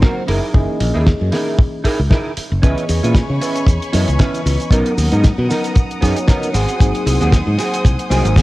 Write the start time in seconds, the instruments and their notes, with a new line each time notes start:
Already playing: reed electric piano F#3 A#3 C4 D#4 C5
0.01 clean electric guitar C4 F#4 A#4, kick, snare
0.27 fingered electric bass F#1, clean electric guitar D#4 E4 G#4 A#4, open hi-hat
0.53 fingered electric bass F#1, reed electric piano E3 A#3 C#4 G#4 D#5, kick
0.80 fingered electric bass A#1, open hi-hat
0.94 fingered electric bass D#2, clean electric guitar D#4 E4 G#4 A#4
1.06 kick, snare
1.20 fingered electric bass F#2, muted clean electric guitar stroke
1.32 clean electric guitar D#4 E4 G#4 A#4, snare, open hi-hat
1.59 kick
1.84 clean electric guitar D#4 E4 G#4 A#4, kick, open hi-hat
1.99 fingered electric bass C#2
2.10 clean electric guitar D#4 E4 G#4 A#4, kick, snare
2.37 muted fingered electric bass stroke, open hi-hat
2.51 fingered electric bass F#1, muted clean electric guitar stroke
2.62 fingered electric bass C#2, reed electric piano E3 B3 C#4 G#4 D#5, clean electric guitar C#4 E4 B4, string section C#5 G#5 B5 C#6, kick, closed hi-hat, cabasa
2.78 closed hi-hat
2.89 fingered electric bass E2, open hi-hat, cabasa
3.03 fingered electric bass A#2, clean electric guitar C#4 E4 B4, closed hi-hat, cabasa
3.15 kick, snare, closed hi-hat, cabasa
3.29 fingered electric bass C#3, muted clean electric guitar stroke
3.40 clean electric guitar C#4 E4 B4, open hi-hat, cabasa
3.56 closed hi-hat, cabasa
3.67 fingered electric bass E2, kick, closed hi-hat, cabasa
3.82 closed hi-hat
3.93 fingered electric bass F#2, reed electric piano E3 B3 C#4 B4 D#5, clean electric guitar C#4 E4 B4, open hi-hat, cabasa
4.08 fingered electric bass C#2, closed hi-hat, cabasa
4.19 clean electric guitar C#4 E4 B4, kick, snare, closed hi-hat, cabasa
4.34 closed hi-hat, cabasa
4.46 fingered electric bass C#2, open hi-hat, cabasa
4.60 muted clean electric guitar stroke, closed hi-hat, cabasa
4.71 fingered electric bass B1, reed electric piano F#3 B3 C#4 D#4 A#4, clean electric guitar B3 D#4 A#4, string section B3 F#5 A#5 D#6, kick, closed hi-hat, cabasa
4.86 closed hi-hat
4.98 fingered electric bass D#2, open hi-hat, cabasa
5.12 fingered electric bass G#2, clean electric guitar B3 D#4 A#4, closed hi-hat, cabasa
5.24 kick, snare, closed hi-hat, cabasa
5.38 fingered electric bass B2, muted clean electric guitar stroke
5.49 clean electric guitar B3 D#4 A#4, snare, open hi-hat, cabasa
5.64 closed hi-hat, cabasa
5.76 kick, closed hi-hat, cabasa
5.91 closed hi-hat
6.01 fingered electric bass F#2, reed electric piano F#3 B3 C#4 D#4 C#5, clean electric guitar B3 D#4 G#4, kick, open hi-hat, cabasa
6.16 closed hi-hat, cabasa
6.27 clean electric guitar B3 D#4 A#4, kick, snare, closed hi-hat, cabasa
6.43 closed hi-hat, cabasa
6.53 fingered electric bass G#1, clean electric guitar C4 F#4 G#4, string section C5 G#5, open hi-hat, cabasa
6.68 closed hi-hat, cabasa
6.79 fingered electric bass G#1, reed electric piano F#3 A#3 C4 D#4 G#4, kick, closed hi-hat, cabasa
6.95 closed hi-hat
7.06 fingered electric bass C2, open hi-hat, cabasa
7.20 fingered electric bass D#2, clean electric guitar C4 F#4 G#4, closed hi-hat, cabasa
7.32 kick, snare, closed hi-hat, cabasa
7.46 fingered electric bass G#2, muted clean electric guitar stroke
7.58 clean electric guitar C4 F#4 G#4, open hi-hat, cabasa
7.74 closed hi-hat, cabasa
7.85 fingered electric bass C2, kick, closed hi-hat, cabasa
7.99 closed hi-hat
8.10 fingered electric bass C2, reed electric piano F#3 A#3 C4 D#4 C5, clean electric guitar C4 F#4 G#4, open hi-hat, cabasa
8.25 fingered electric bass G#1, closed hi-hat, cabasa
8.36 clean electric guitar C4 F#4 G#4, kick, snare, closed hi-hat, cabasa